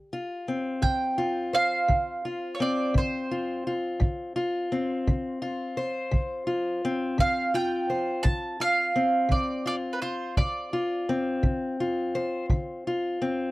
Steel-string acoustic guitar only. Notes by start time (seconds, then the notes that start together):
Already playing: D3
0.13 F4
0.48 C4
0.82 D3
1.18 F4
1.53 C5
1.88 D3
2.25 F4
2.60 C4
2.94 D3
3.31 F4
3.67 F4
4.00 D3
4.36 F4
4.72 C4
5.07 D3
5.42 F4
5.77 C5
6.11 D3
6.47 F4
6.85 C4
7.18 D3
7.54 F4
7.90 C5
8.24 D3
8.60 F4
8.96 C4
9.29 D3
9.66 F4
10.02 F4
10.38 D3
10.73 F4
11.09 C4
11.43 D3
11.80 F4
12.15 C5
12.50 D3
12.87 F4
13.22 C4